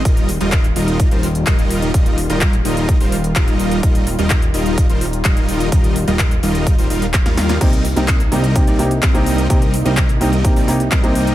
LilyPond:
<<
  \new Staff \with { instrumentName = "Supersaw synth" } { \time 4/4 \key ees \major \tempo 4 = 127 bes'8 r16 <g ees' f' bes' ees''>8 r16 <g ees' f' bes' ees''>8. <g ees' f' bes' c''>16 r8 <g ees' f' bes' ees''>4 | <g ees' ees''>8 r16 <g ees' f' bes' ees''>8 r16 <g ees' f' bes' ees''>8. <g ees' f' bes' c''>16 r8 <g ees' f' bes' ees''>4 | <g ees' f' bes' ees''>8 r16 <g ees' f' bes' ees''>8 r16 <g ees' f' bes' ees''>8. <g ees' f' bes' c''>16 r8 <g ees' f' bes' ees''>4 | <g ees' bes'>8 r16 <g ees' f' bes' ees''>8 r16 <g ees' f' bes' ees''>8. <g ees' f' bes' c''>16 <g ees' f' bes' f''>16 r8 <g ees' f' bes' f''>8. |
<g c' ees'>8 r16 <g c' ees' bes' ees''>8 r16 <g c' ees' bes' ees''>8. <g c' ees' bes' d''>16 r8 <g c' ees' bes' ees''>4 | <g c' ees' bes'>8 r16 <g c' ees' bes' ees''>8 r16 <g c' ees' bes' ees''>8. <g c' ees' bes' d''>16 r8 <g c' ees' bes' ees''>4 | }
  \new Staff \with { instrumentName = "Grand piano" } { \time 4/4 \key ees \major r1 | r1 | r1 | r1 |
<c bes c' ees' g'>16 r8 <c bes c' ees' g'>16 r8 <c bes c' ees' g'>16 r16 <c bes c' ees' g'>8 <c bes c' ees' g'>16 r8 <c bes c' ees' g'>8. | <c bes c' ees' g'>16 r8 <c bes c' ees' g'>16 r8 <c bes c' ees' g'>16 r16 <c bes c' ees' g'>8 <c bes c' ees' g'>16 r8 <c bes c' ees' g'>8. | }
  \new Staff \with { instrumentName = "Analog synth pad" } { \clef bass \time 4/4 \key ees \major <ees g f'>1~ | <ees g f'>1~ | <ees g f'>1~ | <ees g f'>1 |
<c bes ees'>1~ | <c bes ees'>1 | }
  \new Staff \with { instrumentName = "Analog synth bass" } { \clef bass \time 4/4 \key ees \major ees,,8. ees,,8. ees,,8. ees,,8. ees,,4 | ees,,8. ees,,8. ees,,8. ees,,8. ees,,4 | ees,,8. ees,,8. ees,,8. ees,,8. ees,,4 | ees,,8. ees,,8. ees,,8. ees,,16 ees,,8. ees,8. |
c,8. c,8. c,8. c,8. c,4 | c,8. c,8. c,8. c,8. c,4 | }
  \new DrumStaff \with { instrumentName = "Drums" } \drummode { \time 4/4 <hh bd>16 hh16 hho16 hh16 <hc hh bd>16 hh16 hho16 hh16 <hh bd>16 hh16 hho16 hh16 <hc hh bd>16 hh16 hho16 hh16 | <hh bd>16 hh16 hho16 hh16 <hc hh bd>16 hh16 hho16 hh16 <hh bd>16 hho16 hho16 hh16 <hc hh bd>16 hh16 hho16 hh16 | <hh bd>16 hh16 hho16 hh16 <hc hh bd>16 hh16 hho16 hh16 <hh bd>16 hh16 hho16 hh16 <hc hh bd>16 hh16 hho16 hh16 | <hh bd>16 hh16 hho16 hh16 <hc hh bd>16 hh16 hho16 hh16 <hh bd>16 hho16 hho16 hh16 <hc hh bd sn>16 <hh sn>16 <hho sn>16 <hh sn>16 |
<cymc hh bd>16 hh16 hho16 hh16 <hc hh bd>16 hh16 hho16 hh16 <hh bd>16 hh16 hho16 hh16 <hc hh bd>16 hh16 hho16 hh16 | <hh bd>16 hh16 hho16 hh16 <hc hh bd>16 hh16 hho16 hh16 <hh bd>16 hho16 hho16 hh16 <hc hh bd>16 hh16 hho16 hh16 | }
>>